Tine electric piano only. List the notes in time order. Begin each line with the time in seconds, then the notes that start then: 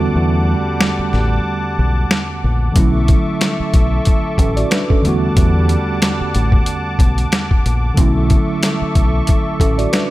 Already playing: E2 D3 G3 A3 B3 F#4
2.72 D3 F#3 A3
2.78 C#4 E4
4.39 C#4 A4
4.57 F#4 D5
4.71 D4 B4
4.91 C#4 A4
5.01 E2 D3 G3
5.05 A3 B3 F#4
7.94 D3 F#3 A3
7.99 C#4 E4
9.61 C#4 A4
9.78 F#4 D5
9.93 D4 B4